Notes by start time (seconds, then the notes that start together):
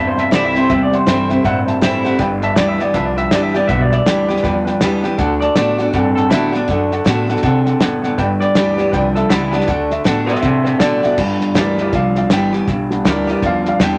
Already playing: E2 G2 C3 A#3
0.07 C5
0.16 C5 E5 A5, snare
0.31 C2 C3 E3 G3 A3 C4 E4 C5 D5 E5 F#5, snare, hi-hat pedal
0.45 E5
0.54 C3 A3 C4 E4 C5 E5 G5, snare
0.58 C5
0.69 E2 C3 G3 C5 E5 G5, kick, snare
0.83 D5
0.91 C5 E5 F#5, snare
0.95 C5
1.06 G2 C3 E3 G3 A3 C4 E4 C5 E5 G5, snare, hi-hat pedal
1.29 C3 A3 C4 E4 C5 E5 G5, snare
1.43 G2 A2 C3 A#3 C5 E5 F#5, kick, snare
1.66 C5 E5 A5, snare
1.81 A2 C3 E3 G3 A3 C4 E4 C5 E5 G5, snare, hi-hat pedal
2.04 C3 A3 C4 E4 C5 E5 F#5, snare
2.18 G1 G2 D3 B4 D5 G5, kick, snare
2.41 B4 D5 E5 A5, snare
2.56 D2 G2 D3 E3 G3 B3 G4 B4 D5 G5, snare, hi-hat pedal
2.68 E5
2.78 G2 E3 B3 G4 B4 D5 F#5, snare
2.94 C2 G2 D3 F3 B4 D5 E5 A5, kick, snare
3.05 D5
3.16 B4 D5 E5 G5, snare
3.31 G1 G2 D3 E3 G3 B3 G4 B4 D5 G5, snare, hi-hat pedal
3.43 E5
3.53 G2 E3 B3 G4 B4 D5 G5, snare
3.68 B1 G2 D3 B4 D5 E5 F#5, kick, snare
3.81 D5
3.90 B4 D5 E5, snare
3.94 D5
4.05 D2 G2 D3 E3 G3 B3 G4 B4 D5 G5, snare, hi-hat pedal
4.28 G2 E3 B3 G4 B4 D5 G5, snare
4.36 snare
4.43 E2 G2 D3 F3 B4 D5 G5, kick, snare
4.65 B4 D5 G5, snare
4.80 E2 G2 D3 E3 G3 B3 G4 B4 D5 G5, snare, hi-hat pedal
5.02 G2 E3 G4 B4 D5 G5, snare
5.06 B3
5.17 D2 D3 A3 A4 D5 F#5, kick, snare
5.41 A4 D5 A5, snare
5.55 A2 D3 A3 B3 D4 F#4 A4 D5 F#5, snare, hi-hat pedal
5.78 D3 B3 D4 F#4 A4 D5 F#5, snare
5.93 G2 A2 D3 C4 A4 D5 F#5, kick, snare
6.15 A4 D5 F#5, snare
6.30 D2 D3 A3 B3 D4 E4 F#4 A4 D5 E5, snare, hi-hat pedal
6.52 D3 B3 D4 F#4 A4 D5 F#5, snare
6.68 F#2 D3 A3 A4 D5 F#5, kick, snare
6.91 A4 D5 F#5, snare
7.04 A2 D3 A3 B3 D4 F#4 A4 D5 F#5, snare, hi-hat pedal
7.27 D3 B3 D4 F#4 A4 D5 F#5, snare
7.36 snare
7.43 C3 D3 C4 A4 D5 F#5, kick, snare
7.64 A4 D5 F#5, snare
7.80 F#1 A2 D3 B3 A4 D5 F#5, snare, hi-hat pedal
8.02 D3 B3 A4 D5 F#5, snare
8.18 G1 G2 D3 B4 D5 G5, kick, snare
8.40 B4 D5 G5, snare
8.54 D2 G2 D3 E3 G3 B3 G4 B4 D5 G5, snare, hi-hat pedal
8.77 G2 E3 B3 G4 B4 D5 G5, snare
8.92 C2 G2 D3 F3 B4 D5 G5, kick, snare
9.14 A4 B4 D5 E5, snare
9.29 C#2 G2 D3 E3 G3 B3 E4 G4 B4 D5 F#5, snare, hi-hat pedal
9.51 G2 E3 B3 D4 G4 B4 D5 F#5, snare
9.60 snare
9.67 D2 D3 A3 A4 D5 F#5, kick, snare
9.90 A4 D5 E5, snare
10.04 A2 D3 A3 B3 D4 F#4 A4 D5 F#5, snare, hi-hat pedal
10.26 D3 B3 D4 F#4 A4 C5 D5 E5 A5, snare
10.35 snare
10.41 A2 C3 D3 C4 A4 C5 D5 E5 F#5, kick, snare
10.65 A4 C5 D5 E5 F#5, snare
10.79 B2 D3 A3 B3 D4 F#4 A4 D5 A5, snare, hi-hat pedal
11.02 D3 B3 D4 F#4 A4 D5 E5, snare
11.18 G1 G2 D3 G3 B3 D4, kick, snare, crash
11.40 snare
11.54 D2 G2 D3 E3 G3 B3 G4 A#4 C#5, snare, hi-hat pedal
11.58 D5
11.78 G2 E3 A#4 D5, snare
11.93 C2 G2 D3 F3 D5 F5, kick, snare
12.15 D5 F5, snare
12.30 G1 G2 D3 E3 G3 B3 G4 G5, snare, hi-hat pedal
12.53 G2 E3 B3 G4, snare
12.68 B1 G2 D3, kick, snare
12.90 G3 B3 D4, snare
13.04 D2 G2 D3 E3 G3 B3 G4 A#4 C#5, snare, hi-hat pedal
13.08 D5
13.27 G2 E3 B3 G4 A#4 D5, snare
13.42 E2 G2 D3 F3 D5 F5, kick, snare
13.65 D5 F5, snare
13.80 E2 G2 D3 E3 G3 B3 G4 G5, snare, hi-hat pedal